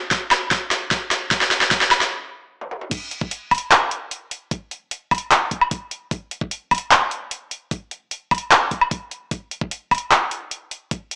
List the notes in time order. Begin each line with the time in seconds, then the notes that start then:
0.11 kick, snare, closed hi-hat
0.31 snare, closed hi-hat, high woodblock
0.51 kick, snare, closed hi-hat
0.71 snare, closed hi-hat
0.91 kick, snare, closed hi-hat
1.11 snare, closed hi-hat
1.31 kick, snare, closed hi-hat
1.41 snare
1.51 snare, closed hi-hat
1.61 snare
1.71 kick, snare, closed hi-hat
1.81 snare
1.91 snare, closed hi-hat, high woodblock
2.01 snare
2.61 high tom
2.71 mid tom
2.81 mid tom
2.91 kick, closed hi-hat, crash
3.11 closed hi-hat
3.21 kick
3.31 closed hi-hat
3.51 kick, closed hi-hat, high woodblock
3.55 closed hi-hat
3.58 closed hi-hat
3.71 clap, closed hi-hat
3.91 closed hi-hat
4.11 closed hi-hat
4.31 closed hi-hat
4.51 kick, closed hi-hat
4.71 closed hi-hat
4.91 closed hi-hat
5.11 kick, closed hi-hat, high woodblock
5.15 closed hi-hat
5.18 closed hi-hat
5.31 clap, closed hi-hat
5.51 kick, closed hi-hat
5.61 high woodblock
5.71 kick, closed hi-hat
5.91 closed hi-hat
6.11 kick, closed hi-hat
6.31 closed hi-hat
6.41 kick
6.51 closed hi-hat
6.71 kick, closed hi-hat, high woodblock
6.75 closed hi-hat
6.78 closed hi-hat
6.91 clap, closed hi-hat
7.11 closed hi-hat
7.31 closed hi-hat
7.51 closed hi-hat
7.71 kick, closed hi-hat
7.91 closed hi-hat
8.11 closed hi-hat
8.31 kick, closed hi-hat, high woodblock
8.35 closed hi-hat
8.38 closed hi-hat
8.51 clap, closed hi-hat
8.71 kick, closed hi-hat
8.81 high woodblock
8.91 kick, closed hi-hat
9.11 closed hi-hat
9.31 kick, closed hi-hat
9.51 closed hi-hat
9.61 kick
9.71 closed hi-hat
9.91 kick, closed hi-hat, high woodblock
9.95 closed hi-hat
9.98 closed hi-hat
10.11 clap, closed hi-hat
10.31 closed hi-hat
10.51 closed hi-hat
10.71 closed hi-hat
10.91 kick, closed hi-hat
11.11 closed hi-hat